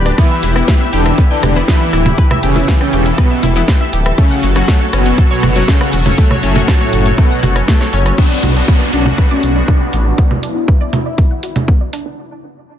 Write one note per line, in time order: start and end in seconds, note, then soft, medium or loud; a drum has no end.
0.00 0.12 D1 loud
0.00 0.14 G3 medium
0.00 4.14 G4 medium
0.00 2.14 B4 medium
0.00 0.14 D5 loud
0.06 0.12 D4 medium
0.06 0.12 D5 medium
0.06 cross-stick medium
0.06 closed hi-hat soft
0.18 4.14 E3 medium
0.18 0.45 E3 loud
0.18 0.28 B3 loud
0.18 0.45 E4 loud
0.18 4.14 E4 medium
0.18 0.28 B4 medium
0.18 kick loud
0.18 cross-stick medium
0.18 closed hi-hat soft
0.31 0.41 E5 medium
0.31 0.41 E6 medium
0.43 0.62 E1 loud
0.43 0.50 E4 loud
0.43 0.50 E5 medium
0.43 open hi-hat loud
0.56 1.53 E3 medium
0.56 1.53 B3 medium
0.56 0.62 E4 medium
0.56 1.53 E4 loud
0.56 0.62 E5 medium
0.56 cross-stick medium
0.56 closed hi-hat soft
0.68 0.75 B4 medium
0.68 0.75 B5 medium
0.68 kick loud
0.68 snare loud
0.68 closed hi-hat soft
0.81 0.85 E5 loud
0.81 0.85 E6 medium
0.93 1.12 E1 medium
0.93 1.20 D3 loud
0.93 1.20 D4 medium
0.93 1.00 G4 medium
0.93 1.00 G5 medium
0.93 open hi-hat loud
1.06 1.16 E5 medium
1.06 1.16 E6 medium
1.06 cross-stick medium
1.06 closed hi-hat soft
1.18 1.22 B3 medium
1.18 1.22 B4 medium
1.18 kick loud
1.18 closed hi-hat soft
1.31 1.58 D3 loud
1.31 1.58 D4 medium
1.31 1.37 G5 medium
1.31 1.37 G6 medium
1.43 1.62 E1 loud
1.43 1.53 G4 medium
1.43 1.53 G5 medium
1.43 cross-stick medium
1.43 open hi-hat loud
1.43 low conga medium
1.56 1.63 E3 loud
1.56 1.63 B3 medium
1.56 1.60 E4 medium
1.56 1.63 E4 loud
1.56 1.60 E5 medium
1.56 closed hi-hat soft
1.68 1.95 E3 loud
1.68 1.78 B3 loud
1.68 1.95 E4 loud
1.68 1.78 B4 medium
1.68 kick loud
1.68 snare loud
1.68 closed hi-hat soft
1.81 1.91 E5 medium
1.81 1.91 E6 medium
1.93 2.12 D1 loud
1.93 2.00 E4 loud
1.93 2.00 E5 medium
1.93 cross-stick medium
1.93 open hi-hat loud
2.06 2.12 E4 medium
2.06 2.12 E5 medium
2.06 closed hi-hat soft
2.06 low conga loud
2.18 8.14 A4 medium
2.18 2.25 B4 medium
2.18 2.25 B5 medium
2.18 kick loud
2.18 closed hi-hat soft
2.31 2.35 E5 loud
2.31 2.35 E6 medium
2.31 cross-stick medium
2.31 low conga loud
2.43 2.62 E1 loud
2.43 2.70 C#3 loud
2.43 2.70 C#4 loud
2.43 2.50 G4 medium
2.43 2.50 G5 medium
2.43 open hi-hat loud
2.56 3.53 E3 medium
2.56 3.53 B3 medium
2.56 3.53 E4 loud
2.56 2.66 E5 medium
2.56 2.66 E6 medium
2.56 closed hi-hat soft
2.56 low conga medium
2.68 2.72 B3 medium
2.68 2.72 B4 medium
2.68 kick loud
2.68 snare loud
2.68 closed hi-hat soft
2.81 3.08 C#3 loud
2.81 3.08 C#4 medium
2.81 2.87 G5 medium
2.81 2.87 G6 medium
2.81 cross-stick medium
2.93 3.12 E1 medium
2.93 3.03 G4 medium
2.93 3.03 G5 medium
2.93 open hi-hat loud
3.06 3.10 E4 medium
3.06 3.10 E5 medium
3.06 closed hi-hat soft
3.18 3.45 B2 loud
3.18 3.28 B3 loud
3.18 3.45 B3 loud
3.18 3.28 B4 medium
3.18 kick loud
3.18 cross-stick medium
3.18 closed hi-hat soft
3.31 3.41 E5 medium
3.31 3.41 E6 medium
3.43 3.62 E1 medium
3.43 3.50 E4 loud
3.43 3.50 E5 medium
3.43 open hi-hat loud
3.43 low conga medium
3.56 3.63 E3 loud
3.56 3.63 B3 medium
3.56 3.62 E4 medium
3.56 3.63 E4 loud
3.56 3.62 E5 medium
3.56 open hi-hat medium
3.68 3.75 B4 medium
3.68 3.75 B5 medium
3.68 kick loud
3.68 cross-stick medium
3.68 snare loud
3.68 closed hi-hat soft
3.81 3.85 E5 loud
3.81 3.85 E6 medium
3.93 4.12 D1 loud
3.93 4.00 G4 medium
3.93 4.00 G5 medium
3.93 open hi-hat loud
4.06 4.16 E5 medium
4.06 4.16 E6 medium
4.06 cross-stick medium
4.06 closed hi-hat soft
4.18 4.45 C#3 loud
4.18 8.14 F#3 medium
4.18 4.22 A3 medium
4.18 4.45 C#4 loud
4.18 8.14 F#4 medium
4.18 4.22 A4 medium
4.18 8.14 C#5 loud
4.18 kick loud
4.18 closed hi-hat soft
4.31 4.37 F#5 medium
4.31 4.37 F#6 medium
4.43 4.62 F#1 loud
4.43 4.53 F#4 medium
4.43 4.53 F#5 medium
4.43 open hi-hat loud
4.56 5.53 F#3 medium
4.56 4.60 C#4 medium
4.56 5.53 C#4 medium
4.56 5.53 F#4 loud
4.56 4.60 C#5 medium
4.56 cross-stick medium
4.56 closed hi-hat soft
4.68 4.78 A3 loud
4.68 4.78 A4 medium
4.68 kick loud
4.68 snare loud
4.68 closed hi-hat soft
4.81 4.91 C#5 medium
4.81 4.91 C#6 medium
4.93 5.12 F#1 medium
4.93 5.20 B2 loud
4.93 5.20 B3 loud
4.93 5.00 C#4 loud
4.93 5.00 C#5 medium
4.93 cross-stick medium
4.93 open hi-hat loud
5.06 5.12 C#4 medium
5.06 5.12 C#5 medium
5.06 closed hi-hat soft
5.18 5.25 A4 medium
5.18 5.25 A5 medium
5.18 kick loud
5.18 closed hi-hat soft
5.31 5.58 B2 loud
5.31 5.58 B3 medium
5.31 5.35 C#5 loud
5.31 5.35 C#6 medium
5.43 5.62 F#1 loud
5.43 5.50 F#4 medium
5.43 5.50 F#5 medium
5.43 cross-stick medium
5.43 open hi-hat loud
5.43 low conga medium
5.56 5.63 F#3 medium
5.56 5.63 C#4 medium
5.56 5.63 F#4 loud
5.56 5.66 C#5 medium
5.56 5.66 C#6 medium
5.56 closed hi-hat soft
5.68 5.95 C#3 loud
5.68 5.72 A3 medium
5.68 5.95 C#4 loud
5.68 5.72 A4 medium
5.68 kick loud
5.68 snare loud
5.68 closed hi-hat soft
5.81 5.87 F#5 medium
5.81 5.87 F#6 medium
5.81 cross-stick medium
5.93 6.12 E1 loud
5.93 6.03 F#4 medium
5.93 6.03 F#5 medium
5.93 open hi-hat loud
6.06 6.10 C#4 medium
6.06 6.10 C#5 medium
6.06 closed hi-hat soft
6.06 low conga loud
6.18 6.28 A3 loud
6.18 6.28 A4 medium
6.18 kick loud
6.18 closed hi-hat soft
6.31 6.41 C#5 medium
6.31 6.41 C#6 medium
6.31 cross-stick soft
6.31 low conga medium
6.43 6.62 F#1 loud
6.43 6.70 A2 loud
6.43 6.70 A3 loud
6.43 6.50 C#4 loud
6.43 6.50 C#5 medium
6.43 open hi-hat loud
6.56 7.53 F#3 medium
6.56 6.62 C#4 medium
6.56 7.53 C#4 medium
6.56 7.53 F#4 loud
6.56 6.62 C#5 medium
6.56 closed hi-hat soft
6.56 low conga medium
6.68 6.75 A4 medium
6.68 6.75 A5 medium
6.68 kick loud
6.68 cross-stick medium
6.68 snare loud
6.68 closed hi-hat soft
6.81 7.08 A2 loud
6.81 7.08 A3 medium
6.81 6.85 C#5 loud
6.81 6.85 C#6 medium
6.93 7.12 F#1 medium
6.93 7.00 F#4 medium
6.93 7.00 F#5 medium
6.93 open hi-hat loud
7.06 7.16 C#5 medium
7.06 7.16 C#6 medium
7.06 closed hi-hat soft
7.18 7.45 B2 medium
7.18 7.22 A3 medium
7.18 7.45 B3 loud
7.18 7.22 A4 medium
7.18 kick loud
7.18 cross-stick medium
7.18 closed hi-hat soft
7.31 7.37 F#5 medium
7.31 7.37 F#6 medium
7.43 7.62 F#1 loud
7.43 7.53 F#4 medium
7.43 7.53 F#5 medium
7.43 open hi-hat loud
7.43 low conga medium
7.56 7.60 C#4 medium
7.56 7.60 C#5 medium
7.56 cross-stick medium
7.56 open hi-hat medium
7.68 7.78 A3 loud
7.68 7.78 A4 medium
7.68 kick loud
7.68 snare loud
7.68 closed hi-hat soft
7.81 7.91 C#5 medium
7.81 7.91 C#6 medium
7.81 snare soft
7.93 8.12 F#1 loud
7.93 8.00 C#4 loud
7.93 8.00 C#5 medium
7.93 open hi-hat loud
8.06 8.12 C#4 medium
8.06 8.12 C#5 medium
8.06 cross-stick medium
8.06 closed hi-hat soft
8.18 12.14 B3 medium
8.18 8.22 B3 medium
8.18 12.14 D4 medium
8.18 8.45 D4 loud
8.18 10.16 F#4 medium
8.18 kick loud
8.18 crash medium
8.18 downlifter medium
8.31 8.37 F#5 medium
8.43 8.62 B1 loud
8.43 8.53 F#4 medium
8.43 open hi-hat loud
8.43 low conga medium
8.56 8.60 D4 medium
8.68 8.78 B3 loud
8.68 kick loud
8.81 8.91 D5 medium
8.93 9.12 B1 medium
8.93 9.20 C#4 medium
8.93 9.00 D4 loud
8.93 open hi-hat loud
9.06 9.12 D4 medium
9.06 low conga medium
9.18 9.25 B4 medium
9.18 kick loud
9.31 9.58 C#4 medium
9.31 9.35 D5 loud
9.43 9.62 B1 medium
9.43 9.50 F#4 medium
9.43 open hi-hat loud
9.56 9.66 D5 medium
9.68 9.72 B3 medium
9.68 9.95 D4 loud
9.68 kick loud
9.68 low conga medium
9.81 9.87 F#5 medium
9.93 10.12 A1 loud
9.93 10.03 F#4 medium
9.93 open hi-hat loud
10.06 10.10 D4 medium
10.18 10.28 B3 loud
10.18 12.16 E4 medium
10.18 kick loud
10.31 10.41 D5 medium
10.31 low conga medium
10.43 10.50 D4 loud
10.43 open hi-hat loud
10.56 10.62 D4 medium
10.68 10.75 B4 medium
10.68 kick loud
10.81 10.85 D5 loud
10.93 11.00 F#4 medium
10.93 open hi-hat loud
10.93 low conga medium
11.06 11.16 D5 medium
11.18 11.22 B3 medium
11.18 kick loud
11.31 11.37 F#5 medium
11.43 11.53 F#4 medium
11.43 open hi-hat loud
11.56 11.60 D4 medium
11.56 open hi-hat medium
11.56 low conga medium
11.68 11.78 B3 loud
11.68 kick loud
11.81 11.91 D5 medium
11.93 12.00 D4 loud
11.93 open hi-hat loud
12.06 12.12 D4 medium